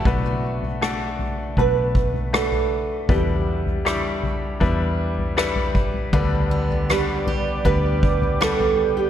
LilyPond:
<<
  \new Staff \with { instrumentName = "Analog synth pad" } { \time 4/4 \key b \phrygian \tempo 4 = 79 r1 | r1 | <b' d'' g'' d'''>1 | }
  \new Staff \with { instrumentName = "Nylon-string guitar" } { \time 4/4 \key b \phrygian r4 fis'4 b'4 a'4 | g'2 r2 | r4 g'4 b'4 a'8. g'16 | }
  \new Staff \with { instrumentName = "Grand piano" } { \time 4/4 \key b \phrygian <a d' fis' b'>4 <a d' fis' d''>4 <a d' fis' b'>4 <a d' fis' b'>4 | <g d' e' b'>4 <g d' e' g'>4 <g d' e' b'>4 <g d' e' b'>4 | <g b d' b'>4 <g b d' b'>4 <g b d' b'>4 <g b d' b'>4 | }
  \new Staff \with { instrumentName = "Grand piano" } { \clef bass \time 4/4 \key b \phrygian r1 | b,4. r2 r8 | d4. r2 r8 | }
  \new Staff \with { instrumentName = "Steel-string acoustic guitar" } { \time 4/4 \key b \phrygian r1 | r1 | d8 b8 <g b g'>8 g'8 g4 b4 | }
  \new Staff \with { instrumentName = "Fingered electric bass" } { \clef bass \time 4/4 \key b \phrygian b,,2 b,,2 | e,2 e,2 | d,2 d,2 | }
  \new DrumStaff \with { instrumentName = "Drums" } \drummode { \time 4/4 <bd tomfh>8. tomfh16 ss8 tomfh8 <bd tomfh>8 bd16 tomfh16 ss16 tomfh8. | <bd tomfh>8. tomfh16 ss8 tomfh8 <bd tomfh>8. tomfh16 ss16 tomfh16 bd16 tomfh16 | <bd tomfh>8. tomfh16 ss8 tomfh8 <bd tomfh>8 bd16 tomfh16 ss16 tomfh8. | }
>>